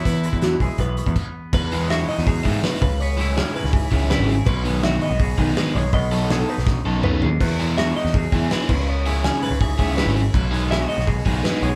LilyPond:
<<
  \new Staff \with { instrumentName = "Clean electric guitar" } { \time 4/4 \key e \major \tempo 4 = 163 b'4 fis'8 gis'8 b'4 r4 | b'4 e''8 dis''8 gis'4 b'8 b'8 | cis''4 gis'8 b'8 gis'4 b'8 gis'8 | b'4 e''8 dis''8 gis'4 b'8 cis''8 |
dis''4 a'8 b'8 r4 b'8 gis'8 | b'4 e''8 dis''8 gis'4 b'8 b'8 | cis''4 gis'8 b'8 gis'4 b'8 gis'8 | b'4 e''8 dis''8 gis'4 b'8 cis''8 | }
  \new Staff \with { instrumentName = "Trumpet" } { \time 4/4 \key e \major e'2. r4 | r1 | r1 | r1 |
r1 | r1 | r1 | r1 | }
  \new Staff \with { instrumentName = "Overdriven electric guitar" } { \time 4/4 \key e \major r1 | r8 <e gis b e'>8 <e gis b e'>8 r4 <e gis b e'>8 <e gis b e'>8 r8 | r8 <cis gis cis' e'>8 <cis gis cis' e'>8 r4 <cis gis cis' e'>8 <cis gis cis' e'>8 r8 | r8 <dis gis b dis'>8 <dis gis b dis'>8 r4 <dis gis b dis'>8 <dis gis b dis'>8 r8 |
r8 <fis b dis' a'>8 <fis b dis' a'>8 r4 <fis b dis' a'>8 <fis b dis' a'>8 r8 | r8 <gis b e' gis'>8 <gis b e' gis'>8 r4 <gis b e' gis'>8 <gis b e' gis'>8 r8 | r8 <gis cis' e' gis'>8 <gis cis' e' gis'>8 r4 <gis cis' e' gis'>8 <gis cis' e' gis'>8 r8 | r8 <gis b dis' gis'>8 <gis b dis' gis'>8 r4 <gis b dis' gis'>8 <gis b dis' gis'>8 r8 | }
  \new Staff \with { instrumentName = "Clean electric guitar" } { \clef bass \time 4/4 \key e \major << { b8 gis8 b8 gis8 b8 b4.~ | b8 gis8 fis'8 dis'2 r8 | b8 e'8 cis'4. b8 e'4~ | e'8 gis8 fis'8 b4. gis8 gis'8 |
r8 a8 gis'8 dis'2~ dis'8 | r8 gis8 fis'8 dis'4. gis8 r8 | b8 e'8 cis'4. b8 e'4~ | e'8 gis8 e'16 fis'16 b4. gis8 gis'8 | } \\ { e,4 e4. b,8 r4 | e,2 b,8 a,8 b,8 cis8~ | cis4. gis,8 e4. cis8 | b,2 b,8 dis4. |
b,2 fis,8 dis8 cis8 dis8 | e,2 b,8 e4 cis8~ | cis4. gis,8 e4. cis8 | b,2 b,8 dis4. | } >> }
  \new Staff \with { instrumentName = "Picked electric bass" } { \clef bass \time 4/4 \key e \major e,8. e,8. b,,16 r16 b,,8. e,16 r4 | e,4.~ e,16 e,8. gis,8 r8 cis,8~ | cis,4. r16 cis,8. cis,8. gis,,8. | b,,4.~ b,,16 b,,8. b,,8 r8 b,,8 |
b,,4.~ b,,16 b,,8. b,,8 cis,8 dis,8 | e,4.~ e,16 e,8. e,8 r8 cis,8~ | cis,4. r16 cis,8. cis,8. gis,,8. | b,,4.~ b,,16 b,,8. b,,8 r8 b,,8 | }
  \new DrumStaff \with { instrumentName = "Drums" } \drummode { \time 4/4 <hh bd>16 hh16 hh16 <hh bd>16 <hh sn>8 <hho bd>8 <hh bd>8 hh16 <hh bd>16 <cymc bd>4 | <cymc bd>8 hho8 <hho sn>8 hho16 sn16 <hho bd>8 <hho bd>8 <hho sn>16 sn16 <hho bd>8 | hho8 hho8 <hho sn>8 hho16 sn16 <hho bd>8 <hho bd>8 <hho sn>8 hho8 | <cymc bd>8 hho8 <hho sn>8 hho8 <hho bd>8 <hho bd>8 <hho sn>8 hho8 |
<hho bd>8 hho8 <hho sn>8 hho16 sn16 <bd sn>4 toml8 tomfh8 | <cymc hho bd>8 hho8 <hho sn>8 hho16 sn16 <hho bd>8 <hho bd>8 <hho sn>16 sn16 <cymc bd>8 | r8 hho8 <hho sn>8 hho8 <hho bd>8 <hho bd>8 <hho sn>16 sn16 hho8 | <cymc bd>8 hho8 <hho sn>8 hho16 sn16 <hho bd>8 <hho bd>8 <hho sn>16 sn16 hho8 | }
>>